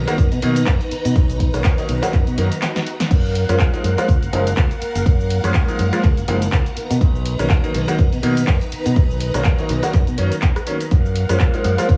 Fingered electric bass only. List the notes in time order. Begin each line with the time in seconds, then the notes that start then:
0.18 F#2
0.32 B2
0.43 B2
0.67 F#2
0.91 muted fingered electric bass stroke
1.05 B2
1.16 B1
1.54 B1
1.89 B1
2.13 F#2
2.27 B2
2.38 F#2
3.11 F#2
3.49 F#2
3.84 F#2
4.08 C#2
4.22 F#1
4.33 F#1
4.57 C#2
4.82 muted fingered electric bass stroke
4.95 F#1
5.06 F#2
5.44 F#2
5.79 F#2
6.04 C#2
6.17 F#1
6.28 F#1
6.52 C#2
6.77 muted fingered electric bass stroke
6.90 B2
7.01 B1
7.39 B1
7.75 B1
7.99 F#2
8.13 B2
8.23 B2
8.47 F#2
8.72 muted fingered electric bass stroke
8.86 B2
8.96 B1
9.34 B1
9.70 B1
9.94 F#2
10.08 B2
10.19 F#2
10.91 F#2
11.29 F#2
11.65 F#2
11.89 C#2